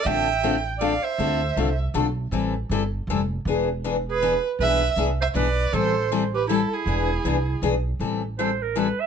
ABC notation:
X:1
M:3/4
L:1/16
Q:"Swing" 1/4=159
K:Am
V:1 name="Violin"
g6 z2 f2 e2- | e6 z6 | z12 | z6 B4 z2 |
e4 z2 e2 d4 | c4 z2 B2 A2 ^G2- | ^G8 z4 | z12 |]
V:2 name="Clarinet"
e6 z2 d2 c2- | c6 z6 | z12 | z6 ^G4 z2 |
B4 z2 c2 B4 | A4 z2 G2 E2 E2- | E8 z4 | z4 c2 _B2 =B2 e2 |]
V:3 name="Steel-string acoustic guitar"
[D,A,CFA]2 z2 [D,A,CFA] z3 [D,A,CFA] z3 | [D,A,CFA]2 z2 [D,A,CFA] z3 [D,A,CFA] z3 | [E,G,CEA]2 z2 [E,G,CEA] z3 [E,G,CEA] z3 | [E,B,D^G]2 z2 [E,B,DG] z3 [E,B,DG] z3 |
[E,B,D^G]2 z2 [E,B,DG] z3 [E,B,DG] z3 | [E,G,CEA]2 z2 [E,G,CEA] z3 [E,G,CEA] z3 | [E,B,D^G]2 z2 [E,B,DG] z3 [E,B,DG] z3 | [E,G,CEA]2 z2 [E,G,CEA] z3 [E,G,CEA] z3 |]
V:4 name="Upright bass" clef=bass
A,,,12 | D,,4 C,,4 B,,,4 | A,,,4 G,,,4 F,,,4 | E,,,12 |
B,,,4 C,,4 B,,,4 | A,,,12 | E,,,4 C,,4 B,,,4 | A,,,12 |]